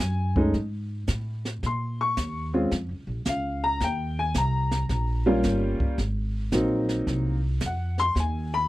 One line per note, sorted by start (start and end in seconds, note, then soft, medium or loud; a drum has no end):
0.00 0.52 F#2 medium
0.00 0.34 G#5 medium
0.00 snare medium
0.36 0.52 G#3 medium
0.36 0.52 A3 medium
0.36 0.52 C#4 medium
0.36 0.53 D#4 medium
0.36 kick medium
0.54 1.06 G#2 medium
0.54 brush sweep soft
0.54 kick soft
0.54 snare soft
1.07 1.61 A2 medium
1.07 kick soft
1.07 snare medium
1.07 hi-hat pedal medium
1.45 snare soft
1.63 2.16 A#2 medium
1.63 2.00 C6 medium
1.63 brush sweep soft
1.63 kick soft
1.63 snare soft
2.01 2.51 C#6 medium
2.17 2.70 D#2 medium
2.17 kick soft
2.17 snare medium
2.17 hi-hat pedal medium
2.54 2.70 G#3 medium
2.54 2.70 C4 medium
2.54 2.70 C#4 medium
2.54 2.70 F4 medium
2.71 2.90 F2 medium
2.71 brush sweep soft
2.71 kick soft
2.71 snare soft
2.89 3.06 C#2 medium
3.07 3.24 A#1 medium
3.25 3.79 C#2 medium
3.25 3.63 F5 medium
3.25 kick soft
3.25 snare medium
3.25 hi-hat pedal medium
3.64 3.80 A#5 loud
3.80 4.33 D#2 medium
3.80 4.18 G5 medium
3.80 brush sweep soft
3.80 kick soft
3.80 snare soft
4.19 4.35 G#5 medium
4.34 4.87 C2 medium
4.34 5.23 A#5 medium
4.34 kick soft
4.34 snare medium
4.34 hi-hat pedal medium
4.71 snare medium
4.89 5.42 A#1 medium
4.89 brush sweep soft
4.89 kick soft
4.89 snare soft
5.26 5.95 G3 medium
5.26 5.95 A#3 medium
5.26 5.95 C#4 medium
5.26 5.95 F4 medium
5.43 5.77 G1 medium
5.43 kick soft
5.43 snare medium
5.43 hi-hat pedal soft
5.80 muted upright bass stroke soft
5.80 kick medium
5.98 6.51 G#1 medium
5.98 brush sweep medium
5.98 kick soft
5.98 snare soft
6.52 7.05 A#1 medium
6.52 7.36 F#3 medium
6.52 7.36 A#3 medium
6.52 7.36 C4 medium
6.52 7.37 D#4 medium
6.52 kick soft
6.52 snare medium
6.52 hi-hat pedal medium
6.89 snare soft
7.07 7.60 C2 medium
7.07 brush sweep medium
7.07 kick soft
7.07 snare soft
7.60 8.14 F2 medium
7.60 kick soft
7.60 snare medium
7.60 hi-hat pedal medium
7.66 7.99 F#5 medium
7.98 8.16 C6 loud
7.98 snare soft
8.15 8.68 D#2 medium
8.15 brush sweep soft
8.15 kick soft
8.15 snare soft
8.20 8.53 G#5 medium
8.54 8.68 B5 loud